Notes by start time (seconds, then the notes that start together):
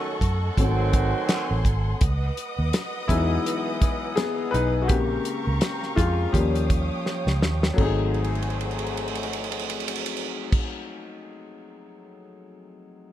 Already playing: D#3 F#3 A3 C#4 F#4 A4 D#5 F#5 C#6
0.21 F#2, kick, closed hi-hat
0.57 G#1 D#3 F#3 A3 C4 F#4 G#5 C6, kick, closed hi-hat
0.93 kick, closed hi-hat
1.29 snare, clap, closed hi-hat
1.51 A1
1.65 G#1, kick, closed hi-hat
2.01 C#2 B4 D#5 F#5 D#6, kick, closed hi-hat
2.37 closed hi-hat
2.59 D#2
2.73 snare, closed hi-hat
3.08 E2 E3 F#3 G#3 B3 D#4 E4, kick, closed hi-hat
3.46 closed hi-hat
3.82 kick, closed hi-hat
4.16 B3 G#4, snare, closed hi-hat
4.51 B1 D#4 B4, closed hi-hat
4.82 F#4
4.88 A#1 C#3 G#3 A#3 C4 G4 A#4 F5 A#5 C#6, kick, closed hi-hat
5.25 closed hi-hat
5.47 C#2
5.61 snare, closed hi-hat
5.83 snare
5.96 F2 G#3 F4, kick, closed hi-hat
6.33 D#2 F3 G3 A#3 C#4 G4 C#5 G5 D#6, kick, closed hi-hat
6.55 closed hi-hat
6.70 kick, closed hi-hat
7.06 snare
7.27 C#2, snare
7.42 D#2, snare
7.63 snare
7.74 F#3 A3
7.78 G#1 A3 C4 D#4 F#4 G#4 C5, kick, crash
7.83 G#4
8.14 crash
8.24 ride
8.35 crash
8.42 ride
8.50 crash
8.61 ride
8.71 crash
8.79 ride
8.87 crash
8.97 ride
9.08 crash
9.15 ride
9.23 crash
9.33 ride
9.44 crash
9.52 ride
9.59 crash
9.70 ride
9.80 crash
9.88 ride
9.96 crash
10.06 ride
10.17 crash
10.52 kick, crash